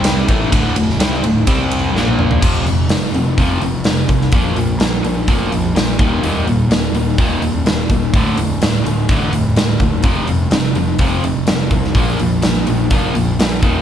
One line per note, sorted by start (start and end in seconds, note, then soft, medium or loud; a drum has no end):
0.00 0.25 C2 medium
0.00 0.28 C3 medium
0.00 0.28 G3 medium
0.00 0.28 C4 medium
0.00 ride loud
0.05 snare loud
0.28 0.50 A1 medium
0.28 0.50 A2 medium
0.28 0.51 E3 loud
0.28 0.51 A3 loud
0.28 kick medium
0.28 ride medium
0.50 0.74 D1 medium
0.50 0.74 D2 medium
0.50 0.75 A2 medium
0.50 0.75 D3 medium
0.50 kick medium
0.50 ride loud
0.74 0.96 D1 medium
0.74 0.95 D2 medium
0.74 0.95 A2 medium
0.74 ride medium
0.90 snare soft
0.97 1.20 C2 medium
0.97 1.23 C3 loud
0.97 1.23 G3 loud
0.97 ride medium
1.01 1.23 C4 loud
1.01 snare loud
1.21 1.44 D1 medium
1.21 1.43 D2 medium
1.21 1.43 A2 medium
1.21 ride medium
1.47 1.91 C2 medium
1.47 1.94 C3 medium
1.47 1.94 G3 loud
1.47 1.94 C4 loud
1.47 kick medium
1.47 ride medium
1.71 ride medium
1.93 2.38 A#1 medium
1.93 2.41 A#2 medium
1.93 2.42 F3 medium
1.93 2.42 A#3 loud
1.93 snare medium
2.08 high tom medium
2.19 mid tom medium
2.31 floor tom medium
2.42 2.62 F1 medium
2.42 2.64 F2 medium
2.42 2.65 C3 medium
2.42 2.65 F3 medium
2.42 kick loud
2.42 crash medium
2.64 2.85 F1 medium
2.64 2.88 F2 medium
2.64 2.88 C3 medium
2.64 open hi-hat soft
2.89 3.09 F1 medium
2.89 3.12 F2 medium
2.89 3.12 C3 medium
2.89 snare loud
2.89 open hi-hat medium
3.12 3.33 F1 medium
3.12 3.36 F2 medium
3.12 3.36 C3 medium
3.12 open hi-hat medium
3.38 3.58 F1 medium
3.38 3.60 F2 medium
3.38 3.61 C3 medium
3.38 3.61 F3 loud
3.38 kick loud
3.38 open hi-hat medium
3.60 3.81 F1 medium
3.60 3.84 F2 medium
3.60 3.84 C3 medium
3.60 open hi-hat medium
3.84 4.05 F1 medium
3.84 4.07 F2 medium
3.84 4.07 C3 medium
3.84 snare loud
3.84 open hi-hat medium
4.08 4.28 C2 medium
4.08 4.30 F2 medium
4.08 4.31 C3 medium
4.08 kick medium
4.08 open hi-hat medium
4.21 snare soft
4.32 4.52 A#1 medium
4.32 4.55 A#2 medium
4.32 4.56 F3 medium
4.32 4.56 A#3 medium
4.32 kick loud
4.32 open hi-hat medium
4.56 4.76 A#1 medium
4.56 4.78 A#2 medium
4.56 4.78 F3 medium
4.56 open hi-hat medium
4.78 4.99 A#1 medium
4.78 5.01 A#2 medium
4.78 5.02 F3 medium
4.78 snare loud
4.78 open hi-hat medium
5.03 5.24 A#1 medium
5.03 5.25 A#2 medium
5.03 5.25 F3 medium
5.03 open hi-hat medium
5.27 5.48 F1 medium
5.27 5.50 A#2 medium
5.27 5.51 F3 loud
5.27 5.51 A#3 medium
5.27 kick medium
5.27 open hi-hat medium
5.52 5.72 A#1 medium
5.52 5.73 A#2 medium
5.52 5.74 F3 medium
5.52 open hi-hat medium
5.75 5.95 A#1 medium
5.75 5.97 A#2 medium
5.75 5.98 F3 medium
5.75 snare loud
5.75 open hi-hat medium
5.99 6.20 D#1 medium
5.99 6.22 D#2 medium
5.99 6.22 A#2 loud
5.99 6.23 D#3 medium
5.99 kick loud
5.99 open hi-hat soft
6.22 6.42 D#1 medium
6.22 6.45 D#2 medium
6.22 6.46 A#2 medium
6.22 6.46 D#3 medium
6.22 open hi-hat medium
6.46 6.67 D#1 medium
6.46 6.68 D#2 medium
6.46 6.69 A#2 medium
6.46 open hi-hat soft
6.68 6.89 D#1 medium
6.68 6.93 D#2 medium
6.68 6.93 A#2 medium
6.68 snare loud
6.68 open hi-hat medium
6.92 7.13 D#1 medium
6.92 7.17 D#2 medium
6.92 7.16 A#2 medium
6.92 open hi-hat medium
7.18 7.38 D#1 medium
7.18 7.40 D#2 loud
7.18 7.41 A#2 medium
7.18 7.42 D#3 loud
7.18 kick loud
7.18 open hi-hat medium
7.42 7.62 D#1 medium
7.42 7.63 D#2 medium
7.42 7.64 A#2 medium
7.42 open hi-hat soft
7.65 7.86 D#1 medium
7.65 7.88 D#2 medium
7.65 7.88 A#2 medium
7.65 snare loud
7.65 open hi-hat medium
7.90 8.10 D#1 medium
7.90 8.11 D#2 medium
7.90 8.12 A#2 medium
7.90 kick medium
7.90 open hi-hat medium
8.13 8.33 D1 medium
8.13 8.36 D2 medium
8.13 8.37 A2 medium
8.13 8.37 D3 medium
8.13 kick loud
8.13 open hi-hat medium
8.37 8.57 D1 medium
8.37 8.59 D2 medium
8.37 8.59 A2 medium
8.37 open hi-hat medium
8.62 8.82 D1 medium
8.62 8.83 D2 medium
8.62 8.83 A2 medium
8.62 snare loud
8.62 open hi-hat medium
8.84 9.05 D1 medium
8.84 9.06 D2 medium
8.84 9.07 A2 medium
8.84 open hi-hat medium
9.09 9.29 A1 medium
9.09 9.31 D2 medium
9.09 9.31 A2 medium
9.09 9.32 D3 medium
9.09 kick loud
9.09 open hi-hat medium
9.30 9.52 D1 medium
9.30 9.54 D2 medium
9.30 9.54 A2 medium
9.30 open hi-hat medium
9.54 9.75 D1 medium
9.54 9.78 D2 medium
9.54 9.79 A2 medium
9.54 snare loud
9.54 open hi-hat medium
9.79 10.01 D#1 medium
9.79 10.01 D2 medium
9.79 10.02 A2 medium
9.79 kick medium
9.79 open hi-hat soft
10.03 10.24 F1 medium
10.03 10.26 F2 medium
10.03 10.27 C3 medium
10.03 10.27 F3 medium
10.03 kick loud
10.03 open hi-hat medium
10.27 10.48 F1 medium
10.27 10.50 F2 medium
10.27 10.50 C3 medium
10.27 open hi-hat soft
10.50 10.71 F1 medium
10.50 10.74 F2 medium
10.50 10.74 C3 medium
10.50 snare loud
10.50 open hi-hat medium
10.74 10.95 F1 medium
10.74 10.98 F2 medium
10.74 10.98 C3 medium
10.74 open hi-hat soft
10.99 11.19 F1 medium
10.99 11.22 F2 medium
10.99 11.22 C3 medium
10.99 11.23 F3 medium
10.99 kick loud
10.99 open hi-hat medium
11.23 11.43 F1 medium
11.23 11.46 F2 medium
11.23 11.46 C3 medium
11.23 open hi-hat medium
11.47 11.68 F1 medium
11.47 11.69 F2 medium
11.47 11.69 C3 medium
11.47 snare loud
11.47 open hi-hat medium
11.70 11.91 C2 medium
11.70 11.93 F2 medium
11.70 11.93 C3 medium
11.70 kick medium
11.70 open hi-hat medium
11.85 snare soft
11.95 12.15 A#1 medium
11.95 12.17 A#2 medium
11.95 12.18 F3 medium
11.95 12.18 A#3 medium
11.95 kick loud
11.95 open hi-hat medium
12.19 12.40 A#1 medium
12.19 12.41 A#2 medium
12.19 12.41 F3 medium
12.19 open hi-hat medium
12.42 12.63 A#1 medium
12.42 12.65 A#2 medium
12.42 12.64 F3 medium
12.42 snare loud
12.42 open hi-hat medium
12.67 12.88 A#1 medium
12.67 12.89 A#2 medium
12.67 12.89 F3 medium
12.67 open hi-hat medium
12.90 13.10 F1 medium
12.90 13.13 A#2 medium
12.90 13.14 F3 loud
12.90 13.14 A#3 medium
12.90 kick loud
12.90 open hi-hat medium
13.14 13.35 A#1 medium
13.14 13.36 A#2 medium
13.14 13.37 F3 medium
13.14 open hi-hat medium
13.39 13.59 A#1 medium
13.39 13.60 A#2 medium
13.39 13.60 F3 medium
13.39 snare loud
13.39 open hi-hat medium
13.62 13.82 D#1 medium
13.62 13.82 D#2 medium
13.62 13.82 A#2 medium
13.62 13.82 D#3 loud
13.62 kick medium
13.62 open hi-hat soft